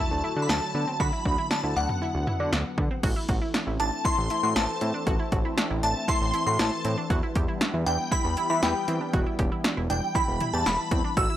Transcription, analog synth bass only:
0.11 D2
0.36 D3
0.49 D2
0.75 D3
1.00 D2
1.25 D2
1.64 D2
1.76 D2
2.14 D2
2.40 D3
2.53 D2
2.78 D3
3.03 A1
3.29 A1
3.67 A1
3.80 A1
4.18 A1
4.43 A2
4.56 A1
4.81 A2
5.07 A1
5.32 A1
5.70 A1
5.83 A1
6.21 A1
6.47 A2
6.59 A1
6.85 A2
7.10 E2
7.36 E2
7.74 E2
7.87 E2
8.25 E2
8.50 E3
8.63 E2
8.88 E3
9.14 E1
9.39 E1
9.77 E1
9.90 E1
10.28 E1
10.53 E2
10.66 E1
10.91 E2
11.17 A1

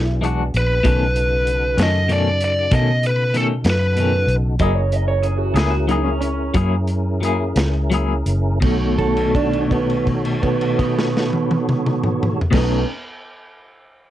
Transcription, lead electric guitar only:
0.57 B4
1.82 D#5
2.13 D5
2.44 D5
2.75 D#5
3.07 B4
3.37 A4
3.70 B4

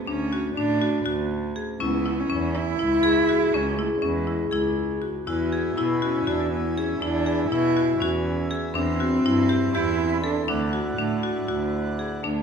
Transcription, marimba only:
0.07 D4
0.33 F#4
0.57 D4
0.81 F#4
1.06 F#4
1.56 G#4
1.80 C#4
2.06 E4
2.30 C#4
2.55 E4
2.79 E4
3.29 F#4
3.54 C#4
3.79 E4
4.02 C#4
4.27 E4
4.52 E4
5.02 F#4
5.27 E4
5.52 G#4
5.78 E4
6.02 F#4
6.27 F#4
6.78 G#4
7.02 E4
7.26 G#4
7.52 E4
7.77 F#4
8.02 F#4
8.51 G#4
8.75 D4
9.00 F#4
9.26 E4
9.49 G4
9.75 G4
10.24 A4
10.48 D4
10.73 F#4
10.98 D4
11.23 F#4
11.49 F#4
11.99 G#4
12.24 D4

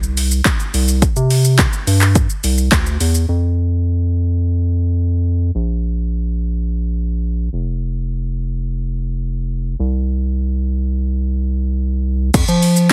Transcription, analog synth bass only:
Already playing: C2
0.74 C2
1.16 C3
1.87 G2
2.44 C2
2.72 D2
3.00 E2
3.29 F2
5.55 A#1
7.53 F1
9.80 C2
12.34 F2
12.48 F3

